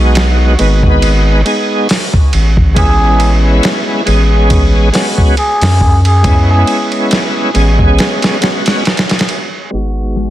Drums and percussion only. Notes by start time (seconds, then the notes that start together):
0.15 snare, ride
0.59 ride
0.83 kick
1.02 ride
1.46 ride
1.89 snare, open hi-hat
2.14 kick
2.33 ride
2.57 kick
2.76 kick, ride
3.20 ride
3.63 snare, ride
4.07 ride
4.50 kick, ride
4.94 snare, open hi-hat
5.18 kick
5.37 ride
5.62 snare, open hi-hat
5.81 kick
6.05 ride
6.24 kick, ride
6.67 ride
6.92 ride
7.11 snare, ride
7.55 ride
7.79 kick
7.99 snare, ride
8.22 snare, ride
8.42 snare, ride
8.66 snare, ride
8.85 snare, ride
8.97 snare, ride
9.09 snare, ride
9.19 snare, ride
9.29 ride
9.72 ride
10.16 ride